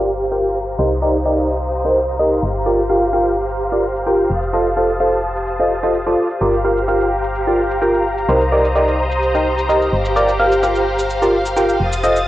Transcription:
Already playing: G1 F4 G4 A#4 C5 D5 F5 A#5, downlifter
0.21 shaker
0.32 F4 G4 A#4 G5, shaker
0.44 shaker
0.68 shaker
0.78 C2 D#4 G4 A#4 C5 D#6, shaker
0.91 shaker
1.02 D#4 G4 A#4 D5
1.15 shaker
1.25 D#4 G4 A#4 D5, shaker
1.38 shaker
1.61 shaker
1.73 shaker
1.85 D#4 G4 A#4 C5, shaker
2.08 shaker
2.19 D#4 G4 A#4 D#5, shaker
2.32 shaker
2.43 G1 G4 F5
2.55 shaker
2.66 F4 G4 A#4 D5, shaker
2.79 shaker
2.89 F4 G4 A#4 F5
3.02 shaker
3.13 F4 G4 A#4 F5, shaker
3.26 shaker
3.49 shaker
3.60 shaker
3.72 F4 G4 A#4 D5, shaker
3.96 shaker
4.07 F4 G4 A#4 G5, shaker
4.19 shaker
4.30 F1 D#6 A6
4.43 shaker
4.53 F4 A4 C5 D#5, shaker
4.59 A5
4.66 shaker
4.77 F4 A4 C5 F5
4.90 shaker
5.00 F4 A4 C5 F5, shaker
5.13 shaker
5.36 shaker
5.48 shaker
5.60 F4 A4 C5 D#5, shaker
5.83 F4 A4 C5 D#5, shaker
5.94 shaker
6.06 F4 A4 C5 D5, shaker
6.30 shaker
6.41 G1 F4 G4 A#4 D5 F5 A#5, shaker
6.54 shaker
6.64 F4 G4 A#4 F5
6.77 shaker
6.88 F4 G4 A#4 F5, shaker
7.01 shaker
7.06 A#5
7.24 shaker
7.35 shaker
7.47 F4 G4 A#4 D5, shaker
7.71 shaker
7.82 F4 G4 A#4 G5, shaker
7.94 shaker
8.18 shaker
8.28 C2 D#4 G4 A#4 C5 D#6, shaker
8.41 shaker
8.46 C5
8.52 D#4 G4 A#4 D5
8.65 shaker
8.75 D#4 G4 A#4 D5, shaker
8.88 shaker
9.11 shaker
9.22 shaker
9.35 D#4 G4 A#4 C5, shaker
9.58 shaker
9.69 D#4 G4 A#4 D#5, shaker
9.82 shaker
9.93 G1 G4 F5
10.05 shaker
10.16 F4 G4 A#4 D5, shaker
10.29 shaker
10.39 F4 G4 A#4 F5
10.45 F5
10.52 shaker
10.63 F4 G4 A#4 F5, shaker
10.75 shaker
10.99 shaker
11.10 shaker
11.22 F4 G4 A#4 D5, shaker
11.46 shaker
11.57 F4 G4 A#4 G5, shaker
11.69 shaker
11.80 F1 D#6 A6
11.93 shaker
12.03 F4 A4 C5 D#5, shaker
12.16 shaker

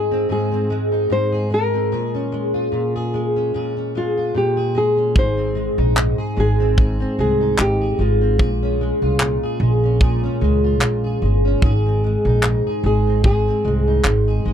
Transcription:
Already playing: G#2 G#3 C4 D#4 G#4
0.12 C4
0.29 G#2 G#4
0.52 C4
0.70 G#3
0.92 D#4
1.10 G#2 C5
1.32 G#4
1.50 G#3 A#4
1.74 C4
1.92 A#2 G#4
2.14 C#4
2.32 G#3
2.54 F4
2.72 A#2
2.96 G#4
3.14 G#3
3.36 C#4
3.54 A#2 G#4
3.77 C#4
3.95 G#3 F4
4.17 F4
4.35 A#2 G4
4.57 G#4
4.75 G#3 G#4
4.97 C#4
5.15 G#1 G#2 G#4 C5, kick
5.37 C4
5.55 G#3
5.78 A#1 D#4
5.97 G#2, clap
6.18 G#4
6.37 G#1 G#3 G#4
6.60 C4
6.78 G#2 G#4, kick
7.00 C4
7.19 C2 G#3 G#4
7.41 D#4
7.58 G#1 G#2 G4, clap
7.81 G#4
7.99 G#1 G#3 F4
8.22 C4
8.39 A#1 A#2 G#4, kick
8.63 C#4
8.81 G#3
9.02 C2 F4
9.20 A#2, clap
9.43 G#4
9.60 A#1 G#3
9.84 C#4
10.00 A#2 G#4, kick
10.24 C#4
10.41 C#2 G#3
10.64 F4
10.81 A#1 A#2, clap
11.04 G#4
11.22 G1 G#3
11.45 C#4
11.62 G#1 G#2 G#4, kick
11.86 C4
12.04 G#3
12.25 A#1 D#4
12.43 G#2, clap
12.67 G#4
12.83 G#1 G#3 G#4
13.07 C4
13.24 G#2 G#4, kick
13.48 C4
13.65 C2 G#3
13.87 D#4
14.04 G#1 G#2, clap
14.28 G#4
14.45 G#1 G#3

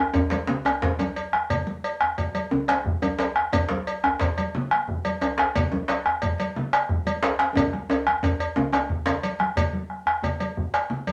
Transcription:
0.14 bombo low, cowbell, djembe slap, djembe tone, djembe bass
0.30 cowbell, djembe slap, high conga
0.47 djembe slap, low conga
0.65 bombo rim, cowbell, djembe tone
0.82 bombo rim, bombo low, djembe slap, djembe bass
0.99 bombo rim, cowbell, djembe tone, high conga, djembe bass
1.16 cowbell, djembe slap
1.33 bombo rim, djembe slap, high conga
1.50 bombo low, cowbell, high conga, low conga, djembe bass
1.67 high conga
1.84 cowbell
2.01 bombo rim, djembe tone
2.18 bombo low, cowbell, high conga
2.34 cowbell, djembe slap, high conga
2.51 djembe tone, low conga
2.68 bombo rim, cowbell, djembe slap, high conga
2.85 bombo low, djembe slap, djembe bass
3.02 cowbell, djembe tone, high conga
3.19 bombo rim, cowbell, djembe slap
3.36 bombo rim, djembe slap
3.53 bombo low, cowbell, djembe tone, high conga, djembe bass, low conga
3.69 djembe slap, high conga
3.87 cowbell
4.04 bombo rim, djembe tone
4.19 bombo low, cowbell, djembe slap, high conga, djembe bass
4.37 cowbell, djembe slap, high conga
4.55 low conga
4.71 bombo rim, djembe slap, high conga
4.87 bombo low, djembe slap, djembe bass
5.04 cowbell, djembe tone, high conga
5.21 bombo rim, cowbell, djembe tone
5.38 bombo rim, djembe slap
5.55 bombo low, cowbell, high conga, djembe bass, low conga
5.72 djembe tone, high conga
5.88 cowbell, djembe slap
6.06 bombo rim, djembe tone
6.22 bombo low, cowbell, djembe slap, high conga, djembe bass
6.38 cowbell, djembe slap, high conga
6.56 low conga
6.73 bombo rim, cowbell, djembe slap
6.89 bombo low, djembe slap, djembe bass
7.06 cowbell, djembe tone, high conga
7.23 bombo rim, cowbell, djembe slap
7.39 bombo rim, djembe slap
7.56 bombo low, cowbell, djembe slap, djembe tone, high conga, djembe bass, low conga
7.73 bombo rim, high conga
7.90 cowbell, djembe tone, high conga
8.07 bombo rim, djembe tone, high conga
8.23 bombo low, cowbell, djembe tone, high conga, djembe bass
8.40 cowbell, djembe slap
8.56 bombo rim, djembe tone, low conga
8.72 bombo rim, cowbell, djembe tone
8.89 bombo low, djembe slap, djembe bass, low conga
9.06 cowbell, djembe slap, djembe tone, low conga
9.23 cowbell, high conga
9.39 bombo rim, djembe slap, high conga
9.56 bombo low, cowbell, djembe slap, djembe bass, low conga
9.73 high conga
9.90 bombo rim
10.06 bombo rim, djembe slap, djembe tone
10.22 bombo rim, cowbell, high conga, djembe bass, low conga
10.40 cowbell, djembe slap, high conga
10.57 bombo low, djembe slap, high conga
10.74 bombo rim, cowbell
10.89 bombo rim, djembe slap, high conga, low conga
11.07 cowbell, djembe tone, high conga

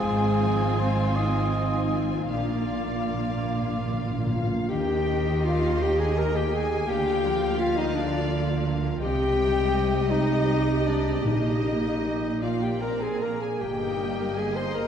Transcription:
Already playing: F2 G#3 C4 F4 G#4 C5 G#5
0.07 G#1 G#2
0.43 F3
0.79 G#3 C4 C5
1.15 D#4 F4 D#5
1.52 C5
1.91 F4
2.30 A#1 A#2 A#3 D4 F4 D5 F5
2.39 A#2
2.55 A#2
2.64 A#2
2.72 A#2 A#3
2.80 A#2
2.88 A#2
2.96 A#2
3.04 A#2
3.12 A#2 F3
3.20 A#2
3.29 A#2
3.37 A#2
3.45 A#2
3.53 A#2 F4
3.60 A#2
3.69 A#2
3.76 A#2
3.85 A#2
3.92 A#2 A#4
4.01 A#2
4.10 A#2
4.18 A#2
4.27 A#2
4.31 A#2 F4 F5
4.43 A#2
4.50 A#2
4.58 A#2
4.69 D#2 D#3 A#3 G4 D#5 G5
5.09 D#4
5.45 F4 G4 F5
5.82 G4 G5 A#5
5.99 G#4 G#5
6.18 A#4 D#5 A#5
6.36 G4 G5
6.54 G4 G#4 G#5
6.88 D2 D3 F4 G4 F5 G5
7.25 F3
7.59 F4 A#4 F5
7.77 D#4 D#5
7.94 D4 D5 F5
8.30 F4
8.66 A#4
9.01 C2 C3 G3 G4 D#5 G5
9.36 G3
9.73 G4
10.10 D#4 D#5
10.48 G4
10.86 D4 D#4 D5
11.24 A#1 A#2 A#3 D#4 D#5
11.63 A#3
12.03 D#4 G4
12.41 A#2 A#3 F4 D5 F5
12.62 G4 G5
12.81 A#3 C4 A#4 A#5
13.02 G#4 G#5
13.21 A#3 D4 A#4 A#5
13.41 G#4 G#5
13.60 G1 G2 A#3 G4 D#5 G5
13.81 D#4
13.99 A#3 G4
14.18 A#4
14.37 G4 G#4 A#4 G#5
14.55 D#4 C5 C6
14.74 G1 G2 A#3 A#4 D#5 A#5

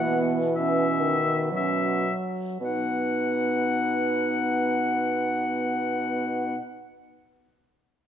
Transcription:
Already playing: B2 E3 A#3 F#5
0.09 B3
0.54 C#4 E5
1.00 D#3
1.52 F#3 C#4
1.56 E5
2.60 B2 B3 D#4
2.64 F#5

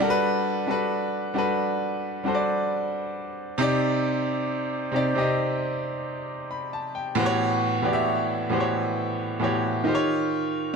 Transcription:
0.00 G3 D4 F#4 A4 A#4
0.10 B4
0.67 G3 D4 F#4 A4
0.71 B4
1.34 G3 D4 F#4 A4
1.38 B4
2.24 G3 D4 F#4 A4
2.28 C5
2.35 D5
3.58 C3 C4 D#4 G4
3.62 D5
4.92 C3 C4 D#4 G4
4.96 D5
5.14 C3 C4 D#4 G4
5.19 D#5
6.51 B5
6.73 A5
6.95 G5
7.15 A2 E3 B3 F#4 G4
7.19 C5
7.26 C#5
7.82 A2 E3 B3 F#4 G4
7.87 D5
7.93 E5
8.49 A2 E3 B3 F#4 G4
8.54 C5
8.60 C#5
9.39 A2 E3 B3 F#4 G4
9.44 C#5
9.84 D#3 D#4 F4 G4
9.88 C5
9.95 C#5

